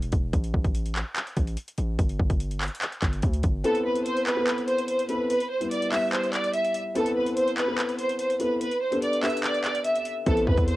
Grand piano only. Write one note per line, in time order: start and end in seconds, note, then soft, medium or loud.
3.64 4.27 B3 loud
3.64 4.27 C4 medium
3.64 4.27 E4 medium
3.64 4.27 A4 medium
3.64 4.28 B4 loud
4.36 4.99 B3 medium
4.36 4.99 C4 medium
4.36 4.99 E4 medium
4.36 5.00 A4 medium
4.36 5.00 B4 medium
5.09 5.30 B3 medium
5.09 5.30 C4 medium
5.09 5.30 E4 medium
5.09 5.30 A4 medium
5.09 5.30 B4 medium
5.60 5.88 G3 medium
5.60 5.88 B3 medium
5.60 5.88 E4 medium
5.60 5.88 G4 medium
5.60 5.88 B4 medium
5.92 6.63 G3 medium
5.92 6.64 B3 medium
5.92 6.64 E4 medium
5.92 6.64 G4 medium
5.92 6.64 B4 medium
6.95 7.58 B3 loud
6.95 7.58 C4 medium
6.95 7.58 E4 medium
6.95 7.58 A4 medium
6.95 7.59 B4 loud
7.67 8.30 B3 medium
7.67 8.30 C4 medium
7.67 8.30 E4 medium
7.67 8.31 A4 medium
7.67 8.31 B4 medium
8.39 8.61 B3 medium
8.39 8.61 C4 medium
8.39 8.61 E4 medium
8.39 8.61 A4 medium
8.39 8.61 B4 medium
8.91 9.18 B3 medium
8.91 9.19 D4 medium
8.91 9.19 G4 medium
8.91 9.19 A4 medium
8.91 9.19 B4 medium
9.23 9.94 B3 medium
9.23 9.95 D4 medium
9.23 9.95 G4 medium
9.23 9.95 A4 medium
9.23 9.95 B4 medium
10.26 10.76 B3 loud
10.26 10.76 C4 medium
10.26 10.76 E4 medium
10.26 10.76 A4 medium
10.26 10.76 B4 loud